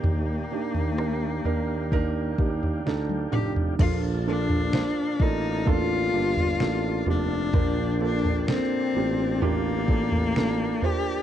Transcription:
<<
  \new Staff \with { instrumentName = "Tonewheel organ" } { \time 4/4 \key bes \major \tempo 4 = 64 << { <g' d'' g''>1 | <d'' a''>1~ | <d'' a''>1 | } \\ { bes'4. f''2~ f''8 | f''1 | g''1 | } >> }
  \new Staff \with { instrumentName = "Felt piano" } { \time 4/4 \key bes \major <d' ees' g'>8 <d' ees' g'>8 <d' ees' bes'>8 <d' ees' bes'>8 <d' ees' bes'>8 <d' ees' g'>8 <d' ees' a'>8 <d' ees' g'>8 | <bes d' f' a'>8 <bes d' f' a'>8 <bes d' f' c''>8 <bes f' a' d''>8 <bes d' f' a'>8 <bes d' f' g'>8 <bes d' f' a'>8 <bes d' f' g'>8 | <bes d' f' bes'>8 <bes d' f' a'>8 <bes d' f' a'>8 <bes d' f' g'>8 <bes d' f' g'>8 <bes d' f' a'>8 <bes d' f' a'>8 <bes d' f' c''>8 | }
  \new Staff \with { instrumentName = "Felt piano" } { \clef bass \time 4/4 \key bes \major bes,4 r2. | <bes, f>4. r2 r8 | <bes, f>4. r2 r8 | }
  \new Staff \with { instrumentName = "Cello" } { \time 4/4 \key bes \major bes2. r8 g'8 | f'8 d'4 ees'8 f'4. d'8~ | d'8 d'8 c'4 bes4. g'8 | }
  \new Staff \with { instrumentName = "Tuba" } { \clef bass \time 4/4 \key bes \major ees,8 r16 ees,8. ees,4 ees,8 d,8 f,,8 | bes,,4~ bes,,16 r16 a,,4 g,,8 a,,8 f,,8 | bes,,4~ bes,,16 r16 a,,4 a,,4 r8 | }
  \new DrumStaff \with { instrumentName = "Drums" } \drummode { \time 4/4 tomfh8. tomfh16 ss8 tomfh8 <bd tomfh>8 bd16 tomfh16 sn16 tommh16 toml16 tomfh16 | <cymc bd tomfh>8. tomfh16 sn8 bd8 <bd tomfh>8. tomfh16 sn8 tomfh8 | <bd tomfh>8. tomfh16 sn4 tomfh8 bd16 tomfh16 sn8 tomfh8 | }
>>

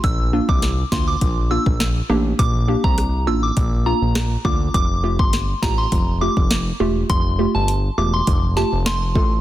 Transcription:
<<
  \new Staff \with { instrumentName = "Synth bell" } { \time 4/4 \key f \major \tempo 4 = 102 e'''16 r8 d'''16 r8 c'''16 d'''16 r8 e'''16 r4 r16 | d'''16 r8 bes''16 r8 e'''16 d'''16 r8 bes''16 r8. d'''16 r16 | d'''16 r8 c'''16 r8 bes''16 c'''16 r8 d'''16 r4 r16 | c'''16 r8 a''16 r8 d'''16 c'''16 r8 a''16 r16 c'''8. r16 | }
  \new Staff \with { instrumentName = "Synth pluck" } { \time 4/4 \key f \major r8 <bes d' f'>8 r8 <bes d' f'>8 r8 <bes d' f'>8 r8 <bes d' g'>8 | r8 <bes d' g'>8 r8 <bes d' f'>8 r8 <bes d' f'>8 r8 <bes d' f'>8 | r8 <a f' g'>8 r8 <a f' g'>8 r8 <a f' g'>8 r8 <a f' g'>8 | r8 <a f' g'>8 r8 <a f' g'>8 r8 <a f' g'>8 r8 <a f' a'>8 | }
  \new Staff \with { instrumentName = "Analog synth bass" } { \clef bass \time 4/4 \key f \major bes,,8. c,8. d,8 bes,,8. bes,,8. a,,8 | bes,,8. c,8. a,,8 bes,,8. bes,,8. d,8 | f,,8. g,,8. a,,8 f,,8. f,,8. e,,8 | f,,8. g,,8. e,,8 f,,8. f,,8. a,,8 | }
  \new DrumStaff \with { instrumentName = "Drums" } \drummode { \time 4/4 <hh bd>8. bd16 <hh sn>8 <bd sn>8 <hh bd>8. bd16 <hh sn>4 | <hh bd>8. bd16 <hh ss>4 <hh bd>4 <hh ss sn>8 bd8 | <hh bd>8. bd16 <hh sn>8 <bd sn>8 <hh bd>8. bd16 <hh sn>4 | <hh bd>4 hh4 <hh bd>8 sn8 <hh sn>8 bd8 | }
>>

